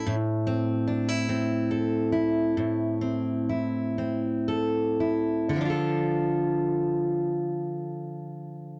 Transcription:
X:1
M:6/8
L:1/16
Q:3/8=41
K:Dm
V:1 name="Steel-string acoustic guitar"
A,,2 C2 D E C2 A2 E2 | A,,2 C2 E2 C2 A2 E2 | [D,F,DFA]12 |]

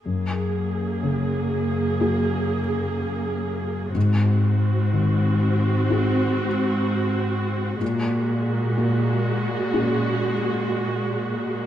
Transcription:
X:1
M:4/4
L:1/8
Q:1/4=62
K:Gblyd
V:1 name="Viola section"
[B,A]8 | [CG]8 | [A,G]8 |]
V:2 name="Felt piano"
G,,2 D,2 [B,GA]4 | A,,2 E,2 [CGA]4 | B,,2 B,2 [DGA]4 |]
V:3 name="Cello section" clef=bass
G,,8 | A,,8 | B,,8 |]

